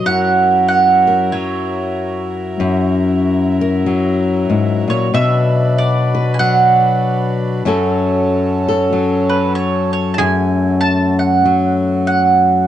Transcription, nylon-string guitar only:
0.00 1.33 F#3 medium
0.06 2.59 F#2 medium
1.07 2.56 A#4 medium
1.33 3.86 F#3 medium
2.60 4.49 F#2 medium
3.61 5.10 A#4 medium
3.86 6.39 F#3 medium
4.50 4.87 G#2 medium
4.88 5.13 A#2 medium
5.14 7.63 B2 medium
6.15 7.63 B4 medium
6.40 7.65 F#3 medium
7.65 10.19 F#2 medium
7.65 8.91 F#3 medium
7.65 10.16 C#4 medium
7.65 10.16 F#4 medium
7.65 8.67 A4 medium
8.69 10.17 A4 medium
8.93 11.44 F#3 medium
10.20 12.67 F#2 medium
11.45 12.67 F#3 medium

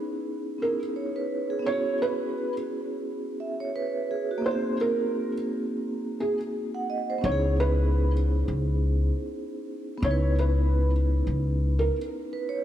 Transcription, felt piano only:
0.62 0.79 A#4 medium
1.66 1.97 C#5 medium
2.02 2.53 B4 medium
4.46 4.77 C5 medium
4.81 5.32 A#4 medium
6.20 6.38 G#4 medium
7.25 7.56 C#5 medium
7.60 8.11 B4 medium
10.04 10.35 C#5 medium
10.39 10.90 B4 medium
11.79 11.96 A#4 medium

